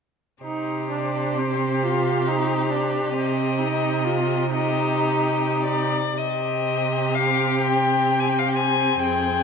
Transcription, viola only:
0.43 D#4
0.91 D4
1.38 C4
1.83 F4
2.28 D#4
2.70 D4
3.15 C4
3.59 D#4
4.05 F4
4.54 D#4
6.16 C4

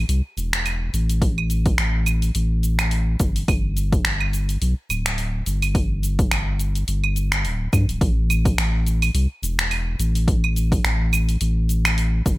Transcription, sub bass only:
0.09 C2
0.37 E1
0.93 A1
1.78 A1
2.35 A1
3.20 G1
3.48 G1
4.05 G1
4.61 B1
4.90 D1
5.46 G1
6.31 G1
6.88 G1
7.44 D1
7.73 G2
7.89 D1
8.01 A1
8.58 A1
9.14 C2
9.42 E1
9.99 A1
10.84 A1
11.41 A1
12.26 G1

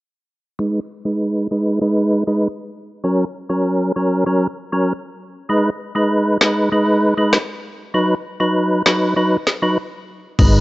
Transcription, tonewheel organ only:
0.59 G#3 D#4 B4
1.05 G#3 D#4 B4
1.51 G#3 D#4 B4
1.81 G#3 D#4 B4
2.27 G#3 D#4 B4
3.04 F#3 C#4 A#4
3.50 F#3 C#4 A#4
3.96 F#3 C#4 A#4
4.26 F#3 C#4 A#4
4.72 F#3 C#4 A#4
5.49 G#3 D#4 B4
5.95 G#3 D#4 B4
6.41 G#3 D#4 B4
6.72 G#3 D#4 B4
7.17 G#3 D#4 B4
7.94 F#3 D#4 B4
8.40 F#3 D#4 B4
8.86 F#3 D#4 B4
9.16 F#3 D#4 B4
9.62 F#3 D#4 B4
10.39 G#3 D#4 B4

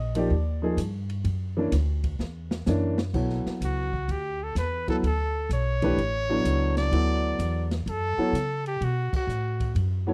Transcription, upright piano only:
Already playing: D#5
0.15 F3 A#3 D#4 G4 D5
0.62 F3 A#3 D#4 G#4
1.57 E3 A#3 C#4 D4
2.67 E3 A#3 C#4 D4
3.14 F#3 B3 E4 A4 C#5
4.88 F#3 B3 E4 A4 B4
5.82 E3 A3 D4 G4 B4
6.29 F#3 B3 D4 E4 A4
6.92 F#3 B3 E4 A4 D5
8.18 F#3 B3 E4 A4 C#5
10.07 F#3 B3 E4 A4 C#5

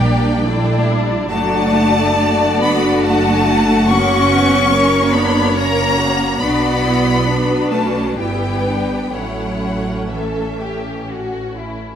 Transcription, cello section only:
Already playing: G3
1.29 A3
2.61 B3
3.04 A3
3.88 C#4
5.14 B3
5.56 A#3
6.40 B3
7.71 A3
8.17 G3
9.14 F#3
10.11 E3

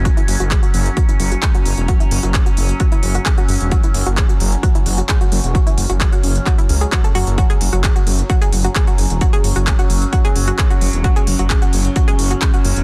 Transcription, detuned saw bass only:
0.28 F#1
0.40 F#1
0.74 F#1
1.20 F#1
1.66 F#1
1.78 E1
2.11 F#1
2.23 F#1
2.57 F#1
3.03 F#1
3.49 F#1
3.61 E1
3.94 F#1
4.06 F#1
4.40 F#1
4.86 F#1
5.32 F#1
5.44 E1
5.78 F#1
5.90 F#1
6.23 F#1
6.69 C#2
7.15 F#1
7.27 F#1
7.61 F#1
7.73 F#1
8.07 F#1
8.52 F#1
8.98 F#1
9.10 E1
9.44 F#1
9.56 F#1
9.90 F#1
10.36 F#1
10.81 F#1
10.93 E1
11.27 F#1
11.39 F#1
11.73 F#1
12.19 F#1
12.65 F#1
12.77 E1

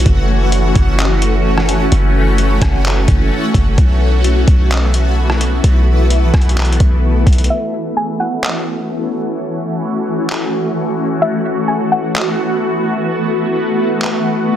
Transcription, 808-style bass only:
0.06 F#1
0.76 F#1
1.92 F#1
2.62 F#1
3.08 F#1
3.54 F#1
3.78 B1
4.48 B1
5.64 B1
6.34 B1
6.80 B1
7.27 B1

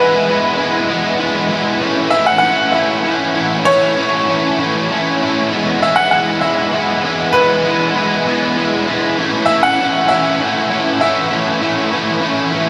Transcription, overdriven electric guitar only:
Already playing: E3 G#3 B3
0.00 E4
0.28 E3 G#3 B3 E4
0.58 E3 G#3 B3 E4
0.89 E3 G#3 B3 E4
1.19 E3 G#3 B3 E4
1.50 E3 G#3 B3 E4
1.81 E3 A3 C#4 E4
2.12 E3 A3 C#4 E4
2.42 E3 A3 C#4 E4
2.73 E3 A3 C#4 E4
3.05 E3 A3 C#4 E4
3.35 E3 A3 C#4 E4
3.66 E3 A3 C#4 E4
3.96 E3 A3 C#4 E4
4.29 E3 A3 C#4 E4
4.59 E3 A3 C#4 E4
4.90 E3 A3 C#4 E4
5.21 E3 A3 C#4 E4
5.52 E3 G#3 B3 E4
5.81 E3 G#3 B3 E4
6.12 E3 G#3 B3 E4
6.42 E3 G#3 B3 E4
6.72 E3 G#3 B3 E4
7.04 E3 G#3 B3 E4
7.33 E3 G#3 B3 E4
7.64 E3 G#3 B3 E4
7.96 E3 G#3 B3 E4
8.26 E3 G#3 B3 E4
8.57 E3 G#3 B3 E4
8.87 E3 G#3 B3 E4
9.19 E3 A3 C#4 E4
9.49 E3 A3 C#4 E4
9.80 E3 A3 C#4 E4
10.10 E3 A3 C#4 E4
10.41 E3 A3 C#4 E4
10.70 E3 A3 C#4 E4
11.01 E3 A3 C#4 E4
11.31 E3 A3 C#4 E4
11.62 E3 A3 C#4 E4
11.92 E3 A3 C#4 E4
12.21 E3 A3 C#4 E4
12.52 E3 A3 C#4 E4

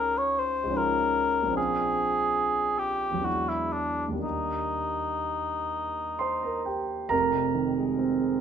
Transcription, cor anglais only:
Already playing: A#4
0.18 C#5
0.39 C5
0.77 A#4
1.57 G#4
2.79 G4
3.25 F#4
3.49 E4
3.72 D4
4.22 D#4

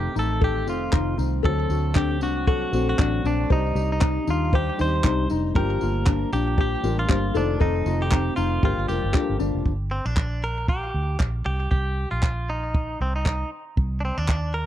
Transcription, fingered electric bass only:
0.16 A1
0.67 F1
0.93 F1
1.18 C2
1.44 D2
1.69 D2
2.21 C2
2.73 A#1
2.99 A1
3.24 A#1
3.50 C2
3.75 C2
4.28 D#2
4.80 D#2
5.05 C2
5.31 F1
5.56 G1
5.82 G1
6.33 A#1
6.83 A1
7.09 G1
7.35 F1
7.61 F1
7.86 F1
8.38 F1
8.63 G1
8.77 G1
8.89 F1
9.04 G1
9.29 G1
9.40 G1
9.55 F1
9.66 G1
10.05 A#1
10.94 D2
11.20 A#1
11.46 C2
11.72 C2
12.12 A#1
13.01 C2
13.78 C2
14.18 D#2

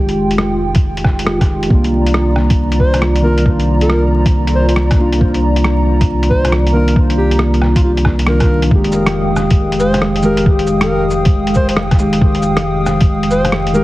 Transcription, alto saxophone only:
2.80 C5
3.23 A#4
3.82 A#4
4.55 C5
4.69 C5
6.30 C5
6.73 A#4
7.17 G4
7.76 F4
7.83 F4
8.28 A#4
9.80 C5
10.24 A#4
10.82 A#4
11.56 C5
11.69 C5
13.31 C5
13.74 A#4

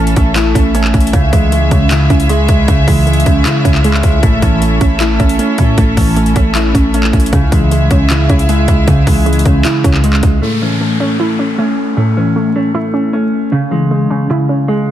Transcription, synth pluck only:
Already playing: A2 E3 A3
0.17 C#4
0.36 E4
0.55 C#4
0.75 A3
1.13 C#3
1.32 E3
1.52 G#3
1.72 C#4
1.92 E4
2.10 C#4
2.30 G#3
2.68 C#3
2.88 E3
3.07 G#3
3.27 C#4
3.45 E4
3.65 C#4
3.84 G#3
4.23 A2
4.42 E3
4.61 A3
4.81 C#4
5.00 E4
5.20 C#4
5.39 A3
5.78 A2
5.97 E3
6.17 A3
6.36 C#4
6.55 E4
6.74 C#4
6.94 A3
7.33 C#3
7.52 E3
7.72 G#3
7.91 C#4
8.11 E4
8.30 C#4
8.49 G#3
8.88 C#3
9.07 E3
9.26 G#3
9.46 C#4
9.65 E4
9.84 C#4
10.04 G#3
10.42 A2
10.62 E3
10.81 A3
11.00 C#4
11.20 E4
11.39 C#4
11.59 A3
11.97 A2
12.17 E3
12.36 A3
12.56 C#4
12.75 E4
12.94 C#4
13.13 A3
13.52 C#3
13.71 E3
13.91 G#3
14.10 C#4
14.30 E4
14.49 C#4
14.68 G#3

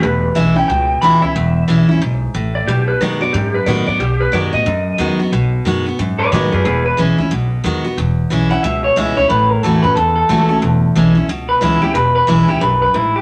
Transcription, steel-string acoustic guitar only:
0.03 E2
0.35 E3 G#3 C#4 E4
0.56 C#4 E4
0.70 B2
1.02 E3 G#3 C#4 E4
1.22 C#4 E4
1.36 E2
1.68 E3 G#3 C#4 E4
1.89 C#4 E4
2.02 G#2
2.34 A2
2.68 B2
3.01 D#3 G#3 B3 F#4
3.21 B3 F#4
3.34 F#2
3.66 D#3 G#3 B3 F#4
3.86 B3 F#4
4.00 B2
4.32 D#3 G#3 B3 F#4
4.53 B3 F#4
4.66 F#2
4.98 D#3 G#3 B3 F#4
5.19 B3 F#4
5.33 B2
5.65 D#3 G#3 B3 F#4
5.86 B3 F#4
5.99 F#2
6.32 D#3 G#3 B3 F#4
6.52 B3 F#4
6.65 E2
6.97 E3 G#3 C#4 E4
7.18 C#4 E4
7.31 B2
7.64 D#3 G#3 B3 F#4
7.84 B3 F#4
7.98 E2
8.30 E3 G#3 C#4 E4
8.51 C#4 E4
8.64 B2
8.96 E3 G#3 C#4 E4
9.17 C#4 E4
9.30 A2
9.63 E3 A3 C#4 F#4
9.84 C#4 F#4
9.97 E2
10.29 E3 A3 C#4 F#4
10.49 C#4 F#4
10.62 E2
10.95 E3 G#3 C#4 E4
11.15 C#4 E4
11.29 B2
11.61 E3 G#3 C#4 E4
11.82 C#4 E4
11.95 E2
12.27 E3 G#3 C#4 E4
12.48 C#4 E4
12.61 F#2
12.94 G#2

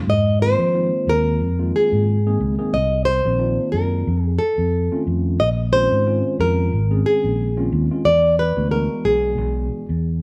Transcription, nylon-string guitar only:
0.10 D#5
0.42 C5
1.09 A#4
1.76 G#4
2.74 D#5
3.05 C5
3.72 A#4
4.24 G#4
4.39 A4
5.40 D#5
5.73 C5
6.41 A#4
7.06 G#4
8.05 D5
8.39 B4
8.71 A#4
9.05 G#4

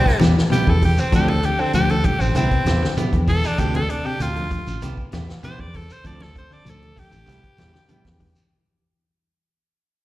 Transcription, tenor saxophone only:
Already playing: C4
0.52 G4
0.70 A4
0.85 G4
1.00 C4
1.15 G4
1.29 A4
1.45 G4
1.60 C4
1.75 G4
1.91 A4
2.05 G4
2.20 C4
2.36 C4
3.29 A4
3.47 D4
3.59 G4
3.76 A4
3.90 D4
4.06 G4
4.21 F4
5.45 C5
5.60 D5
5.76 A4
5.92 C5
6.07 D5
6.23 A4
6.38 C5
6.53 D5
6.70 A4
6.99 G4

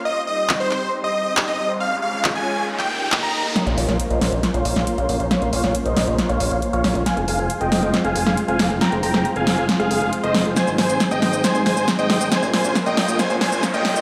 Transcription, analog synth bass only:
3.67 A#1
3.77 A#1
3.88 A#1
4.10 A#1
4.21 A#1
4.32 A#1
4.54 A#1
4.65 A#1
4.76 A#1
4.98 A#1
5.09 A#1
5.20 A#1
5.42 A#1
5.53 A#1
5.64 A#1
5.86 A#1
5.96 A#1
6.07 A#1
6.29 A#1
6.40 A#1
6.51 A#1
6.73 A#1
6.84 A#1
6.95 A#1
7.17 F1
7.28 F1
7.39 F1
7.61 F1
7.72 F1
7.83 F1
8.04 F1
8.15 F1
8.26 F1
8.48 F1
8.59 F1
8.70 F1
8.92 F1
9.03 F1
9.14 F1
9.36 F1
9.47 F1
9.58 F1
9.80 F1
9.91 F1
10.02 F1
10.24 F1
10.35 F1
10.45 F1
10.68 G#1
10.78 G#1
10.89 G#1
11.11 G#1
11.22 G#1
11.33 G#1
11.55 G#1
11.66 G#1
11.77 G#1
11.99 G#1
12.10 G#1
12.21 G#1
12.42 A#1
12.53 A#1
12.64 A#1
12.86 A#1
12.97 A#1
13.08 A#1
13.30 A#1
13.41 A#1
13.52 A#1
13.74 A#1
13.85 A#1
13.96 A#1

